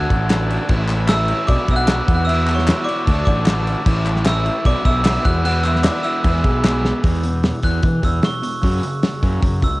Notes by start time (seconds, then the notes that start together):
Already playing: D3 A3 D4 F#4 A4 D5 F#5 A5 F#6
0.10 A1 A3 D4 F#4, kick, crash
0.30 D3 A3 D4 F#4, snare, clap, crash
0.50 crash
0.69 A1 A2 E3 A3 C#4 E4 B4 C#5, kick, crash
0.73 E4
0.89 C#4 E4, clap, crash
0.93 A3
1.08 E3 A3 E5 E6, snare, clap, crash
1.13 C#4 E4
1.28 C#4 E4, crash
1.33 A3
1.47 B1 B2 F#3 B3 F#4 D5 B5 D6, kick, crash
1.51 D4 F#4
1.68 B1 D4 F#4 E6, kick, crash
1.72 B3 E5 F#6
1.76 F#5
1.88 B2 F#3 B3 D4, snare, clap, crash
1.92 F#4
2.08 E2 B2 E3 B3 E4 F#4 E5, kick, crash
2.15 F#5 F#6
2.25 E2 B2 E3 E5 E6
2.29 B3 E4 F#4, crash
2.47 E3 B3 E4 F#4, clap, crash
2.54 C#5 C#6
2.59 snare
2.66 E3 B3 E4 F#4, snare, clap, crash
2.84 F#4 D5 D6
2.88 E3 B3 E4, crash
3.05 D2 D3 A3 A4 D5 A5, kick, crash
3.10 D4 F#4
3.25 A1 D4 F#4 D5 D6, kick, crash
3.29 A3
3.45 D3 A3 D4 F#4, snare, clap, crash
3.67 crash
3.85 A1 A2 E3 A3 C#4 E4 B4 C#5, kick, crash
4.05 A3 C#4 E4, clap, crash
4.16 snare
4.25 E3 A3 C#4 E4 E5 E6, snare, clap, crash
4.45 A3 C#4 E4, crash
4.65 B1 B2 F#3 B3 D4 F#4 D5 B5 D6, kick, crash
4.85 B1 B3 D4 F#4 E5 E6, kick, crash
5.04 B2 F#3 B3 D4 F#4, snare, clap, crash
5.24 E2 B2 E3 B3 E4 F#4 E5 F#5 F#6, kick, crash
5.44 E2 B2 E3 B3 E4 F#4 F#5 F#6, crash
5.63 B3 E4 F#4 E5 E6, clap, crash
5.68 E3
5.75 snare
5.84 E3 B3 E4 F#4 D5 D6, snare, clap, crash
6.03 E3 B3 E4 F#4 E5 E6, crash
6.24 E2 B2 E3 G#3 B3 G#4 E5, kick, crash
6.44 B1 E3 G#3 B3 G#4, kick, crash
6.63 E2 B2 E3 G#3 B3 G#4, snare, clap, crash
6.85 snare
7.03 E2 B2 E3, kick, open hi-hat
7.23 E2 B2, open hi-hat
7.43 E2 B2, snare, open hi-hat
7.63 E2 B2 E3 F#6, kick, open hi-hat
7.83 E2 B2 E3, kick, open hi-hat
8.02 E2 B2 E6, kick, open hi-hat
8.23 E2 B2 C#6, snare, open hi-hat
8.42 E2 B2 C#6, open hi-hat
8.62 F#2 C#3 F#3, kick, open hi-hat
8.83 F#2 C#3, open hi-hat
9.03 F#2 C#3, snare, open hi-hat
9.23 F#2 C#3 F#3, kick, open hi-hat
9.43 F#2 C#3, kick, open hi-hat
9.62 C#2 F#2 C#3 E6, kick, open hi-hat